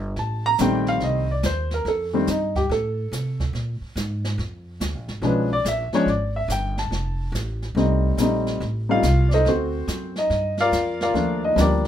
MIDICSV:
0, 0, Header, 1, 5, 480
1, 0, Start_track
1, 0, Tempo, 422535
1, 190, Time_signature, 4, 2, 24, 8
1, 13490, End_track
2, 0, Start_track
2, 0, Title_t, "Grand piano"
2, 0, Program_c, 0, 0
2, 216, Note_on_c, 0, 81, 77
2, 510, Note_off_c, 0, 81, 0
2, 522, Note_on_c, 0, 82, 125
2, 669, Note_on_c, 0, 51, 69
2, 673, Note_off_c, 0, 82, 0
2, 681, Note_on_c, 0, 55, 66
2, 691, Note_on_c, 0, 57, 60
2, 694, Note_on_c, 0, 60, 81
2, 696, Note_on_c, 0, 79, 83
2, 990, Note_off_c, 0, 79, 0
2, 1005, Note_on_c, 0, 77, 94
2, 1154, Note_off_c, 0, 77, 0
2, 1179, Note_on_c, 0, 75, 80
2, 1402, Note_off_c, 0, 51, 0
2, 1407, Note_off_c, 0, 55, 0
2, 1413, Note_off_c, 0, 57, 0
2, 1414, Note_off_c, 0, 60, 0
2, 1471, Note_off_c, 0, 75, 0
2, 1491, Note_on_c, 0, 74, 69
2, 1637, Note_off_c, 0, 74, 0
2, 1654, Note_on_c, 0, 72, 86
2, 1948, Note_off_c, 0, 72, 0
2, 1977, Note_on_c, 0, 70, 83
2, 2119, Note_off_c, 0, 70, 0
2, 2137, Note_on_c, 0, 69, 74
2, 2424, Note_on_c, 0, 51, 72
2, 2429, Note_off_c, 0, 69, 0
2, 2432, Note_on_c, 0, 55, 64
2, 2438, Note_on_c, 0, 57, 60
2, 2443, Note_on_c, 0, 60, 71
2, 2571, Note_off_c, 0, 51, 0
2, 2575, Note_off_c, 0, 55, 0
2, 2578, Note_off_c, 0, 57, 0
2, 2592, Note_off_c, 0, 60, 0
2, 2613, Note_on_c, 0, 63, 76
2, 2907, Note_off_c, 0, 63, 0
2, 2911, Note_on_c, 0, 67, 82
2, 3066, Note_off_c, 0, 67, 0
2, 3087, Note_on_c, 0, 69, 71
2, 3991, Note_off_c, 0, 69, 0
2, 5932, Note_on_c, 0, 53, 66
2, 5942, Note_on_c, 0, 56, 64
2, 5946, Note_on_c, 0, 61, 70
2, 5952, Note_on_c, 0, 62, 78
2, 5970, Note_on_c, 0, 71, 78
2, 6223, Note_off_c, 0, 53, 0
2, 6228, Note_off_c, 0, 56, 0
2, 6230, Note_off_c, 0, 61, 0
2, 6233, Note_off_c, 0, 62, 0
2, 6264, Note_off_c, 0, 71, 0
2, 6280, Note_on_c, 0, 74, 99
2, 6429, Note_off_c, 0, 74, 0
2, 6454, Note_on_c, 0, 76, 88
2, 6740, Note_on_c, 0, 53, 72
2, 6746, Note_off_c, 0, 76, 0
2, 6749, Note_on_c, 0, 56, 71
2, 6752, Note_on_c, 0, 61, 75
2, 6759, Note_on_c, 0, 73, 92
2, 6762, Note_on_c, 0, 62, 92
2, 6887, Note_off_c, 0, 53, 0
2, 6892, Note_off_c, 0, 56, 0
2, 6894, Note_off_c, 0, 61, 0
2, 6899, Note_off_c, 0, 62, 0
2, 6909, Note_off_c, 0, 73, 0
2, 6919, Note_on_c, 0, 74, 75
2, 7219, Note_off_c, 0, 74, 0
2, 7228, Note_on_c, 0, 76, 86
2, 7383, Note_off_c, 0, 76, 0
2, 7405, Note_on_c, 0, 79, 91
2, 7702, Note_off_c, 0, 79, 0
2, 7710, Note_on_c, 0, 81, 83
2, 8304, Note_off_c, 0, 81, 0
2, 8819, Note_on_c, 0, 55, 60
2, 8820, Note_on_c, 0, 57, 58
2, 8828, Note_on_c, 0, 60, 60
2, 8837, Note_on_c, 0, 63, 76
2, 9285, Note_off_c, 0, 55, 0
2, 9286, Note_off_c, 0, 57, 0
2, 9290, Note_off_c, 0, 60, 0
2, 9294, Note_off_c, 0, 63, 0
2, 9316, Note_on_c, 0, 55, 67
2, 9320, Note_on_c, 0, 57, 57
2, 9327, Note_on_c, 0, 60, 61
2, 9339, Note_on_c, 0, 63, 76
2, 9790, Note_off_c, 0, 55, 0
2, 9792, Note_off_c, 0, 57, 0
2, 9795, Note_off_c, 0, 60, 0
2, 9801, Note_off_c, 0, 63, 0
2, 10101, Note_on_c, 0, 55, 62
2, 10106, Note_on_c, 0, 57, 63
2, 10115, Note_on_c, 0, 60, 61
2, 10121, Note_on_c, 0, 63, 74
2, 10121, Note_on_c, 0, 77, 103
2, 10126, Note_on_c, 0, 65, 78
2, 10248, Note_off_c, 0, 55, 0
2, 10250, Note_off_c, 0, 57, 0
2, 10255, Note_off_c, 0, 60, 0
2, 10258, Note_off_c, 0, 63, 0
2, 10553, Note_on_c, 0, 74, 59
2, 10558, Note_off_c, 0, 77, 0
2, 10561, Note_off_c, 0, 65, 0
2, 10574, Note_off_c, 0, 74, 0
2, 10606, Note_on_c, 0, 63, 71
2, 10606, Note_on_c, 0, 75, 91
2, 10607, Note_on_c, 0, 72, 72
2, 10611, Note_on_c, 0, 69, 65
2, 10752, Note_off_c, 0, 75, 0
2, 10753, Note_off_c, 0, 63, 0
2, 10753, Note_off_c, 0, 72, 0
2, 10754, Note_off_c, 0, 69, 0
2, 10771, Note_on_c, 0, 69, 54
2, 10772, Note_on_c, 0, 60, 50
2, 10772, Note_on_c, 0, 72, 68
2, 10773, Note_on_c, 0, 66, 56
2, 11509, Note_off_c, 0, 69, 0
2, 11510, Note_off_c, 0, 60, 0
2, 11510, Note_off_c, 0, 66, 0
2, 11510, Note_off_c, 0, 72, 0
2, 11566, Note_on_c, 0, 63, 60
2, 11569, Note_on_c, 0, 75, 78
2, 12001, Note_off_c, 0, 63, 0
2, 12003, Note_off_c, 0, 75, 0
2, 12047, Note_on_c, 0, 74, 88
2, 12048, Note_on_c, 0, 77, 103
2, 12050, Note_on_c, 0, 65, 83
2, 12050, Note_on_c, 0, 70, 86
2, 12482, Note_off_c, 0, 74, 0
2, 12482, Note_off_c, 0, 77, 0
2, 12483, Note_off_c, 0, 70, 0
2, 12484, Note_off_c, 0, 65, 0
2, 12525, Note_on_c, 0, 74, 75
2, 12526, Note_on_c, 0, 65, 76
2, 12527, Note_on_c, 0, 70, 73
2, 12527, Note_on_c, 0, 77, 86
2, 12650, Note_on_c, 0, 53, 66
2, 12656, Note_on_c, 0, 57, 60
2, 12667, Note_on_c, 0, 58, 62
2, 12670, Note_on_c, 0, 62, 74
2, 12961, Note_off_c, 0, 74, 0
2, 12962, Note_off_c, 0, 65, 0
2, 12962, Note_off_c, 0, 70, 0
2, 12962, Note_off_c, 0, 77, 0
2, 13000, Note_on_c, 0, 75, 86
2, 13008, Note_on_c, 0, 63, 64
2, 13112, Note_off_c, 0, 53, 0
2, 13125, Note_off_c, 0, 57, 0
2, 13125, Note_off_c, 0, 58, 0
2, 13129, Note_on_c, 0, 53, 66
2, 13129, Note_on_c, 0, 55, 54
2, 13132, Note_off_c, 0, 62, 0
2, 13142, Note_on_c, 0, 58, 62
2, 13149, Note_on_c, 0, 62, 74
2, 13150, Note_off_c, 0, 75, 0
2, 13155, Note_off_c, 0, 63, 0
2, 13178, Note_off_c, 0, 62, 0
2, 13186, Note_on_c, 0, 70, 63
2, 13186, Note_on_c, 0, 74, 85
2, 13188, Note_on_c, 0, 67, 63
2, 13195, Note_on_c, 0, 62, 62
2, 13490, Note_off_c, 0, 53, 0
2, 13490, Note_off_c, 0, 55, 0
2, 13490, Note_off_c, 0, 58, 0
2, 13490, Note_off_c, 0, 62, 0
2, 13490, Note_off_c, 0, 67, 0
2, 13490, Note_off_c, 0, 70, 0
2, 13490, Note_off_c, 0, 74, 0
2, 13490, End_track
3, 0, Start_track
3, 0, Title_t, "Upright bass"
3, 0, Program_c, 1, 32
3, 0, Note_on_c, 1, 31, 84
3, 175, Note_off_c, 1, 31, 0
3, 185, Note_on_c, 1, 33, 87
3, 652, Note_off_c, 1, 33, 0
3, 671, Note_on_c, 1, 34, 92
3, 1135, Note_off_c, 1, 34, 0
3, 1150, Note_on_c, 1, 36, 85
3, 1614, Note_off_c, 1, 36, 0
3, 1626, Note_on_c, 1, 39, 98
3, 2092, Note_off_c, 1, 39, 0
3, 2101, Note_on_c, 1, 41, 91
3, 2570, Note_off_c, 1, 41, 0
3, 2587, Note_on_c, 1, 43, 96
3, 3052, Note_off_c, 1, 43, 0
3, 3060, Note_on_c, 1, 45, 87
3, 3529, Note_off_c, 1, 45, 0
3, 3539, Note_on_c, 1, 48, 80
3, 4005, Note_off_c, 1, 48, 0
3, 4012, Note_on_c, 1, 46, 87
3, 4313, Note_off_c, 1, 46, 0
3, 4494, Note_on_c, 1, 44, 94
3, 4965, Note_off_c, 1, 44, 0
3, 4975, Note_on_c, 1, 41, 87
3, 5445, Note_off_c, 1, 41, 0
3, 5456, Note_on_c, 1, 38, 77
3, 5620, Note_off_c, 1, 38, 0
3, 5620, Note_on_c, 1, 34, 55
3, 5765, Note_off_c, 1, 34, 0
3, 5771, Note_on_c, 1, 32, 62
3, 5918, Note_off_c, 1, 32, 0
3, 5925, Note_on_c, 1, 35, 86
3, 6400, Note_off_c, 1, 35, 0
3, 6413, Note_on_c, 1, 34, 85
3, 6713, Note_off_c, 1, 34, 0
3, 6884, Note_on_c, 1, 32, 82
3, 7357, Note_off_c, 1, 32, 0
3, 7363, Note_on_c, 1, 31, 95
3, 7839, Note_off_c, 1, 31, 0
3, 7845, Note_on_c, 1, 29, 77
3, 8309, Note_off_c, 1, 29, 0
3, 8316, Note_on_c, 1, 33, 94
3, 8795, Note_off_c, 1, 33, 0
3, 8801, Note_on_c, 1, 36, 89
3, 9277, Note_off_c, 1, 36, 0
3, 9286, Note_on_c, 1, 34, 87
3, 9760, Note_off_c, 1, 34, 0
3, 9774, Note_on_c, 1, 33, 89
3, 10244, Note_off_c, 1, 33, 0
3, 10256, Note_on_c, 1, 36, 97
3, 10726, Note_off_c, 1, 36, 0
3, 11219, Note_on_c, 1, 42, 89
3, 11688, Note_off_c, 1, 42, 0
3, 11698, Note_on_c, 1, 43, 86
3, 12167, Note_off_c, 1, 43, 0
3, 12175, Note_on_c, 1, 41, 93
3, 12646, Note_off_c, 1, 41, 0
3, 12653, Note_on_c, 1, 39, 81
3, 13125, Note_off_c, 1, 39, 0
3, 13134, Note_on_c, 1, 38, 95
3, 13490, Note_off_c, 1, 38, 0
3, 13490, End_track
4, 0, Start_track
4, 0, Title_t, "Muted upright bass strokes"
4, 4329, Note_on_c, 9, 29, 38
4, 4443, Note_off_c, 9, 29, 0
4, 6733, Note_on_c, 9, 29, 37
4, 6847, Note_off_c, 9, 29, 0
4, 13490, End_track
5, 0, Start_track
5, 0, Title_t, "Drums"
5, 185, Note_on_c, 9, 25, 47
5, 185, Note_on_c, 9, 38, 37
5, 298, Note_off_c, 9, 38, 0
5, 661, Note_on_c, 9, 44, 65
5, 664, Note_on_c, 9, 38, 62
5, 775, Note_off_c, 9, 44, 0
5, 778, Note_off_c, 9, 38, 0
5, 982, Note_on_c, 9, 38, 34
5, 1096, Note_off_c, 9, 38, 0
5, 1139, Note_off_c, 9, 25, 0
5, 1139, Note_on_c, 9, 25, 43
5, 1139, Note_on_c, 9, 38, 42
5, 1252, Note_off_c, 9, 38, 0
5, 1623, Note_on_c, 9, 44, 54
5, 1626, Note_on_c, 9, 38, 69
5, 1736, Note_off_c, 9, 44, 0
5, 1740, Note_off_c, 9, 38, 0
5, 1941, Note_on_c, 9, 38, 39
5, 2054, Note_off_c, 9, 38, 0
5, 2109, Note_off_c, 9, 25, 0
5, 2109, Note_on_c, 9, 25, 54
5, 2109, Note_on_c, 9, 38, 40
5, 2222, Note_off_c, 9, 38, 0
5, 2581, Note_on_c, 9, 44, 59
5, 2585, Note_on_c, 9, 38, 61
5, 2695, Note_off_c, 9, 44, 0
5, 2698, Note_off_c, 9, 38, 0
5, 2904, Note_on_c, 9, 36, 52
5, 2904, Note_on_c, 9, 38, 38
5, 3017, Note_off_c, 9, 36, 0
5, 3017, Note_off_c, 9, 38, 0
5, 3079, Note_off_c, 9, 25, 0
5, 3079, Note_on_c, 9, 25, 42
5, 3079, Note_on_c, 9, 38, 44
5, 3193, Note_off_c, 9, 38, 0
5, 3548, Note_on_c, 9, 44, 53
5, 3551, Note_on_c, 9, 38, 61
5, 3662, Note_off_c, 9, 44, 0
5, 3665, Note_off_c, 9, 38, 0
5, 3861, Note_on_c, 9, 36, 52
5, 3865, Note_on_c, 9, 38, 44
5, 3974, Note_off_c, 9, 36, 0
5, 3979, Note_off_c, 9, 38, 0
5, 4026, Note_off_c, 9, 25, 0
5, 4026, Note_on_c, 9, 25, 53
5, 4026, Note_on_c, 9, 38, 41
5, 4140, Note_off_c, 9, 38, 0
5, 4503, Note_on_c, 9, 44, 58
5, 4506, Note_on_c, 9, 38, 62
5, 4616, Note_off_c, 9, 44, 0
5, 4620, Note_off_c, 9, 38, 0
5, 4823, Note_on_c, 9, 38, 58
5, 4936, Note_off_c, 9, 38, 0
5, 4986, Note_off_c, 9, 25, 0
5, 4986, Note_on_c, 9, 25, 45
5, 4986, Note_on_c, 9, 38, 41
5, 5099, Note_off_c, 9, 38, 0
5, 5460, Note_on_c, 9, 44, 64
5, 5463, Note_on_c, 9, 38, 70
5, 5573, Note_off_c, 9, 44, 0
5, 5577, Note_off_c, 9, 38, 0
5, 5776, Note_on_c, 9, 38, 39
5, 5890, Note_off_c, 9, 38, 0
5, 5935, Note_off_c, 9, 25, 0
5, 5935, Note_on_c, 9, 25, 52
5, 5935, Note_on_c, 9, 38, 37
5, 6049, Note_off_c, 9, 38, 0
5, 6419, Note_on_c, 9, 44, 62
5, 6422, Note_on_c, 9, 38, 65
5, 6532, Note_off_c, 9, 44, 0
5, 6536, Note_off_c, 9, 38, 0
5, 6732, Note_on_c, 9, 38, 39
5, 6845, Note_off_c, 9, 38, 0
5, 6903, Note_off_c, 9, 25, 0
5, 6903, Note_on_c, 9, 25, 47
5, 6903, Note_on_c, 9, 38, 44
5, 7017, Note_off_c, 9, 38, 0
5, 7379, Note_on_c, 9, 44, 64
5, 7382, Note_on_c, 9, 38, 66
5, 7492, Note_off_c, 9, 44, 0
5, 7496, Note_off_c, 9, 38, 0
5, 7698, Note_on_c, 9, 38, 41
5, 7811, Note_off_c, 9, 38, 0
5, 7859, Note_off_c, 9, 25, 0
5, 7859, Note_on_c, 9, 25, 48
5, 7859, Note_on_c, 9, 38, 44
5, 7972, Note_off_c, 9, 38, 0
5, 8346, Note_on_c, 9, 44, 54
5, 8349, Note_on_c, 9, 38, 66
5, 8459, Note_off_c, 9, 44, 0
5, 8463, Note_off_c, 9, 38, 0
5, 8660, Note_on_c, 9, 38, 38
5, 8774, Note_off_c, 9, 38, 0
5, 8826, Note_off_c, 9, 25, 0
5, 8826, Note_on_c, 9, 25, 47
5, 8826, Note_on_c, 9, 38, 39
5, 8940, Note_off_c, 9, 38, 0
5, 9290, Note_on_c, 9, 44, 72
5, 9293, Note_on_c, 9, 38, 69
5, 9403, Note_off_c, 9, 44, 0
5, 9407, Note_off_c, 9, 38, 0
5, 9617, Note_on_c, 9, 38, 39
5, 9731, Note_off_c, 9, 38, 0
5, 9783, Note_off_c, 9, 25, 0
5, 9783, Note_on_c, 9, 25, 46
5, 9783, Note_on_c, 9, 38, 40
5, 9897, Note_off_c, 9, 38, 0
5, 10258, Note_on_c, 9, 44, 62
5, 10262, Note_on_c, 9, 38, 59
5, 10372, Note_off_c, 9, 44, 0
5, 10375, Note_off_c, 9, 38, 0
5, 10575, Note_on_c, 9, 38, 39
5, 10689, Note_off_c, 9, 38, 0
5, 10742, Note_off_c, 9, 25, 0
5, 10742, Note_on_c, 9, 25, 43
5, 10742, Note_on_c, 9, 38, 44
5, 10856, Note_off_c, 9, 38, 0
5, 11222, Note_on_c, 9, 44, 63
5, 11225, Note_on_c, 9, 38, 65
5, 11335, Note_off_c, 9, 44, 0
5, 11339, Note_off_c, 9, 38, 0
5, 11539, Note_on_c, 9, 38, 43
5, 11653, Note_off_c, 9, 38, 0
5, 11705, Note_off_c, 9, 25, 0
5, 11705, Note_on_c, 9, 25, 44
5, 11705, Note_on_c, 9, 38, 40
5, 11819, Note_off_c, 9, 38, 0
5, 12013, Note_on_c, 9, 38, 42
5, 12126, Note_off_c, 9, 38, 0
5, 12183, Note_on_c, 9, 44, 58
5, 12186, Note_on_c, 9, 38, 58
5, 12297, Note_off_c, 9, 44, 0
5, 12300, Note_off_c, 9, 38, 0
5, 12502, Note_on_c, 9, 38, 40
5, 12616, Note_off_c, 9, 38, 0
5, 12666, Note_off_c, 9, 25, 0
5, 12666, Note_on_c, 9, 25, 49
5, 12666, Note_on_c, 9, 38, 39
5, 12779, Note_off_c, 9, 38, 0
5, 13146, Note_on_c, 9, 44, 59
5, 13149, Note_on_c, 9, 38, 70
5, 13259, Note_off_c, 9, 44, 0
5, 13263, Note_off_c, 9, 38, 0
5, 13490, Note_off_c, 9, 25, 0
5, 13490, End_track
0, 0, End_of_file